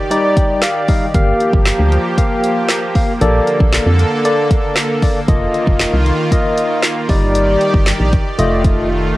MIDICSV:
0, 0, Header, 1, 5, 480
1, 0, Start_track
1, 0, Key_signature, -2, "major"
1, 0, Tempo, 517241
1, 1063, Time_signature, 4, 2, 24, 8
1, 8512, End_track
2, 0, Start_track
2, 0, Title_t, "Tine electric piano"
2, 0, Program_c, 0, 4
2, 100, Note_on_c, 0, 55, 84
2, 102, Note_on_c, 0, 63, 79
2, 105, Note_on_c, 0, 74, 96
2, 343, Note_on_c, 0, 79, 74
2, 558, Note_off_c, 0, 55, 0
2, 559, Note_off_c, 0, 63, 0
2, 561, Note_off_c, 0, 74, 0
2, 566, Note_off_c, 0, 79, 0
2, 583, Note_on_c, 0, 77, 74
2, 806, Note_off_c, 0, 77, 0
2, 820, Note_on_c, 0, 55, 74
2, 823, Note_on_c, 0, 63, 68
2, 823, Note_on_c, 0, 75, 70
2, 825, Note_on_c, 0, 77, 80
2, 974, Note_off_c, 0, 55, 0
2, 975, Note_off_c, 0, 63, 0
2, 976, Note_off_c, 0, 77, 0
2, 1046, Note_off_c, 0, 75, 0
2, 1061, Note_on_c, 0, 58, 82
2, 1063, Note_on_c, 0, 67, 75
2, 1066, Note_on_c, 0, 77, 94
2, 1671, Note_off_c, 0, 58, 0
2, 1672, Note_off_c, 0, 67, 0
2, 1673, Note_off_c, 0, 77, 0
2, 2020, Note_on_c, 0, 58, 84
2, 2022, Note_on_c, 0, 67, 78
2, 2024, Note_on_c, 0, 77, 94
2, 2478, Note_off_c, 0, 58, 0
2, 2479, Note_off_c, 0, 67, 0
2, 2480, Note_off_c, 0, 77, 0
2, 2740, Note_on_c, 0, 58, 76
2, 2742, Note_on_c, 0, 67, 68
2, 2745, Note_on_c, 0, 77, 84
2, 2894, Note_off_c, 0, 58, 0
2, 2895, Note_off_c, 0, 67, 0
2, 2896, Note_off_c, 0, 77, 0
2, 2980, Note_on_c, 0, 58, 82
2, 2982, Note_on_c, 0, 69, 78
2, 2985, Note_on_c, 0, 74, 89
2, 3591, Note_off_c, 0, 58, 0
2, 3592, Note_off_c, 0, 69, 0
2, 3593, Note_off_c, 0, 74, 0
2, 3940, Note_on_c, 0, 58, 84
2, 3943, Note_on_c, 0, 69, 75
2, 3945, Note_on_c, 0, 74, 94
2, 4398, Note_off_c, 0, 58, 0
2, 4399, Note_off_c, 0, 69, 0
2, 4401, Note_off_c, 0, 74, 0
2, 4661, Note_on_c, 0, 58, 75
2, 4663, Note_on_c, 0, 69, 68
2, 4666, Note_on_c, 0, 74, 84
2, 4814, Note_off_c, 0, 58, 0
2, 4815, Note_off_c, 0, 69, 0
2, 4817, Note_off_c, 0, 74, 0
2, 4900, Note_on_c, 0, 58, 81
2, 4903, Note_on_c, 0, 65, 73
2, 4905, Note_on_c, 0, 75, 96
2, 5511, Note_off_c, 0, 58, 0
2, 5512, Note_off_c, 0, 65, 0
2, 5513, Note_off_c, 0, 75, 0
2, 5860, Note_on_c, 0, 58, 86
2, 5863, Note_on_c, 0, 65, 80
2, 5865, Note_on_c, 0, 75, 96
2, 6318, Note_off_c, 0, 58, 0
2, 6320, Note_off_c, 0, 65, 0
2, 6321, Note_off_c, 0, 75, 0
2, 6580, Note_on_c, 0, 55, 89
2, 6583, Note_on_c, 0, 63, 76
2, 6585, Note_on_c, 0, 74, 96
2, 7349, Note_off_c, 0, 55, 0
2, 7351, Note_off_c, 0, 63, 0
2, 7352, Note_off_c, 0, 74, 0
2, 7780, Note_on_c, 0, 57, 89
2, 7782, Note_on_c, 0, 65, 79
2, 7785, Note_on_c, 0, 75, 93
2, 8238, Note_off_c, 0, 57, 0
2, 8239, Note_off_c, 0, 65, 0
2, 8241, Note_off_c, 0, 75, 0
2, 8512, End_track
3, 0, Start_track
3, 0, Title_t, "Supersaw synth"
3, 0, Program_c, 1, 81
3, 0, Note_on_c, 1, 51, 78
3, 0, Note_on_c, 1, 67, 86
3, 0, Note_on_c, 1, 74, 68
3, 1026, Note_off_c, 1, 51, 0
3, 1042, Note_off_c, 1, 67, 0
3, 1042, Note_off_c, 1, 74, 0
3, 1064, Note_on_c, 1, 53, 79
3, 1064, Note_on_c, 1, 58, 72
3, 1065, Note_on_c, 1, 67, 84
3, 2964, Note_off_c, 1, 53, 0
3, 2964, Note_off_c, 1, 67, 0
3, 2983, Note_on_c, 1, 50, 81
3, 2983, Note_on_c, 1, 69, 88
3, 4883, Note_off_c, 1, 69, 0
3, 4884, Note_off_c, 1, 50, 0
3, 4904, Note_on_c, 1, 51, 81
3, 4904, Note_on_c, 1, 65, 85
3, 6546, Note_off_c, 1, 58, 0
3, 6566, Note_off_c, 1, 51, 0
3, 6566, Note_off_c, 1, 65, 0
3, 6584, Note_on_c, 1, 51, 79
3, 6584, Note_on_c, 1, 67, 87
3, 6584, Note_on_c, 1, 74, 68
3, 7771, Note_off_c, 1, 51, 0
3, 7771, Note_off_c, 1, 67, 0
3, 7771, Note_off_c, 1, 74, 0
3, 7784, Note_on_c, 1, 51, 76
3, 7784, Note_on_c, 1, 57, 68
3, 7784, Note_on_c, 1, 65, 85
3, 8512, Note_off_c, 1, 51, 0
3, 8512, Note_off_c, 1, 57, 0
3, 8512, Note_off_c, 1, 65, 0
3, 8512, End_track
4, 0, Start_track
4, 0, Title_t, "FM bass"
4, 0, Program_c, 2, 39
4, 1063, Note_on_c, 2, 31, 108
4, 1236, Note_off_c, 2, 31, 0
4, 1423, Note_on_c, 2, 31, 91
4, 1596, Note_off_c, 2, 31, 0
4, 1662, Note_on_c, 2, 38, 90
4, 1836, Note_off_c, 2, 38, 0
4, 2983, Note_on_c, 2, 34, 114
4, 3156, Note_off_c, 2, 34, 0
4, 3343, Note_on_c, 2, 34, 89
4, 3516, Note_off_c, 2, 34, 0
4, 3582, Note_on_c, 2, 41, 88
4, 3756, Note_off_c, 2, 41, 0
4, 4903, Note_on_c, 2, 29, 110
4, 5076, Note_off_c, 2, 29, 0
4, 5263, Note_on_c, 2, 29, 89
4, 5436, Note_off_c, 2, 29, 0
4, 5503, Note_on_c, 2, 36, 88
4, 5676, Note_off_c, 2, 36, 0
4, 6583, Note_on_c, 2, 31, 106
4, 7016, Note_off_c, 2, 31, 0
4, 7183, Note_on_c, 2, 31, 92
4, 7356, Note_off_c, 2, 31, 0
4, 7423, Note_on_c, 2, 34, 90
4, 7596, Note_off_c, 2, 34, 0
4, 7783, Note_on_c, 2, 29, 109
4, 8476, Note_off_c, 2, 29, 0
4, 8512, End_track
5, 0, Start_track
5, 0, Title_t, "Drums"
5, 103, Note_on_c, 9, 42, 93
5, 196, Note_off_c, 9, 42, 0
5, 342, Note_on_c, 9, 36, 98
5, 342, Note_on_c, 9, 42, 88
5, 435, Note_off_c, 9, 36, 0
5, 435, Note_off_c, 9, 42, 0
5, 574, Note_on_c, 9, 38, 92
5, 581, Note_on_c, 9, 39, 107
5, 582, Note_on_c, 9, 42, 107
5, 667, Note_off_c, 9, 38, 0
5, 674, Note_off_c, 9, 39, 0
5, 675, Note_off_c, 9, 42, 0
5, 820, Note_on_c, 9, 46, 70
5, 823, Note_on_c, 9, 36, 87
5, 913, Note_off_c, 9, 46, 0
5, 916, Note_off_c, 9, 36, 0
5, 1062, Note_on_c, 9, 42, 93
5, 1063, Note_on_c, 9, 36, 106
5, 1155, Note_off_c, 9, 42, 0
5, 1156, Note_off_c, 9, 36, 0
5, 1303, Note_on_c, 9, 42, 66
5, 1395, Note_off_c, 9, 42, 0
5, 1423, Note_on_c, 9, 36, 93
5, 1516, Note_off_c, 9, 36, 0
5, 1537, Note_on_c, 9, 38, 91
5, 1542, Note_on_c, 9, 42, 82
5, 1544, Note_on_c, 9, 39, 109
5, 1629, Note_off_c, 9, 38, 0
5, 1634, Note_off_c, 9, 42, 0
5, 1636, Note_off_c, 9, 39, 0
5, 1783, Note_on_c, 9, 42, 70
5, 1876, Note_off_c, 9, 42, 0
5, 2021, Note_on_c, 9, 36, 91
5, 2023, Note_on_c, 9, 42, 91
5, 2114, Note_off_c, 9, 36, 0
5, 2116, Note_off_c, 9, 42, 0
5, 2262, Note_on_c, 9, 42, 92
5, 2355, Note_off_c, 9, 42, 0
5, 2494, Note_on_c, 9, 38, 90
5, 2501, Note_on_c, 9, 39, 115
5, 2502, Note_on_c, 9, 42, 104
5, 2587, Note_off_c, 9, 38, 0
5, 2594, Note_off_c, 9, 39, 0
5, 2595, Note_off_c, 9, 42, 0
5, 2740, Note_on_c, 9, 46, 67
5, 2743, Note_on_c, 9, 36, 86
5, 2833, Note_off_c, 9, 46, 0
5, 2836, Note_off_c, 9, 36, 0
5, 2982, Note_on_c, 9, 42, 94
5, 3075, Note_off_c, 9, 42, 0
5, 3223, Note_on_c, 9, 42, 64
5, 3315, Note_off_c, 9, 42, 0
5, 3343, Note_on_c, 9, 36, 93
5, 3436, Note_off_c, 9, 36, 0
5, 3457, Note_on_c, 9, 38, 88
5, 3462, Note_on_c, 9, 42, 82
5, 3464, Note_on_c, 9, 39, 111
5, 3550, Note_off_c, 9, 38, 0
5, 3555, Note_off_c, 9, 42, 0
5, 3557, Note_off_c, 9, 39, 0
5, 3704, Note_on_c, 9, 42, 70
5, 3797, Note_off_c, 9, 42, 0
5, 3943, Note_on_c, 9, 42, 98
5, 4036, Note_off_c, 9, 42, 0
5, 4182, Note_on_c, 9, 36, 95
5, 4182, Note_on_c, 9, 42, 88
5, 4275, Note_off_c, 9, 36, 0
5, 4275, Note_off_c, 9, 42, 0
5, 4415, Note_on_c, 9, 38, 95
5, 4422, Note_on_c, 9, 39, 115
5, 4423, Note_on_c, 9, 42, 102
5, 4508, Note_off_c, 9, 38, 0
5, 4515, Note_off_c, 9, 39, 0
5, 4516, Note_off_c, 9, 42, 0
5, 4662, Note_on_c, 9, 46, 69
5, 4664, Note_on_c, 9, 36, 86
5, 4754, Note_off_c, 9, 46, 0
5, 4756, Note_off_c, 9, 36, 0
5, 4902, Note_on_c, 9, 42, 92
5, 4903, Note_on_c, 9, 36, 110
5, 4995, Note_off_c, 9, 42, 0
5, 4996, Note_off_c, 9, 36, 0
5, 5143, Note_on_c, 9, 42, 65
5, 5236, Note_off_c, 9, 42, 0
5, 5263, Note_on_c, 9, 36, 92
5, 5356, Note_off_c, 9, 36, 0
5, 5377, Note_on_c, 9, 38, 87
5, 5382, Note_on_c, 9, 42, 83
5, 5384, Note_on_c, 9, 39, 115
5, 5470, Note_off_c, 9, 38, 0
5, 5475, Note_off_c, 9, 42, 0
5, 5477, Note_off_c, 9, 39, 0
5, 5623, Note_on_c, 9, 42, 68
5, 5716, Note_off_c, 9, 42, 0
5, 5861, Note_on_c, 9, 36, 89
5, 5863, Note_on_c, 9, 42, 91
5, 5954, Note_off_c, 9, 36, 0
5, 5956, Note_off_c, 9, 42, 0
5, 6102, Note_on_c, 9, 42, 86
5, 6194, Note_off_c, 9, 42, 0
5, 6334, Note_on_c, 9, 38, 89
5, 6341, Note_on_c, 9, 39, 113
5, 6342, Note_on_c, 9, 42, 102
5, 6427, Note_off_c, 9, 38, 0
5, 6434, Note_off_c, 9, 39, 0
5, 6435, Note_off_c, 9, 42, 0
5, 6580, Note_on_c, 9, 46, 68
5, 6583, Note_on_c, 9, 36, 83
5, 6673, Note_off_c, 9, 46, 0
5, 6676, Note_off_c, 9, 36, 0
5, 6822, Note_on_c, 9, 42, 91
5, 6915, Note_off_c, 9, 42, 0
5, 7063, Note_on_c, 9, 42, 62
5, 7156, Note_off_c, 9, 42, 0
5, 7183, Note_on_c, 9, 36, 92
5, 7276, Note_off_c, 9, 36, 0
5, 7296, Note_on_c, 9, 38, 88
5, 7301, Note_on_c, 9, 42, 77
5, 7303, Note_on_c, 9, 39, 115
5, 7389, Note_off_c, 9, 38, 0
5, 7394, Note_off_c, 9, 42, 0
5, 7396, Note_off_c, 9, 39, 0
5, 7543, Note_on_c, 9, 42, 70
5, 7544, Note_on_c, 9, 36, 97
5, 7635, Note_off_c, 9, 42, 0
5, 7637, Note_off_c, 9, 36, 0
5, 7783, Note_on_c, 9, 42, 91
5, 7876, Note_off_c, 9, 42, 0
5, 8022, Note_on_c, 9, 36, 95
5, 8022, Note_on_c, 9, 42, 88
5, 8114, Note_off_c, 9, 42, 0
5, 8115, Note_off_c, 9, 36, 0
5, 8512, End_track
0, 0, End_of_file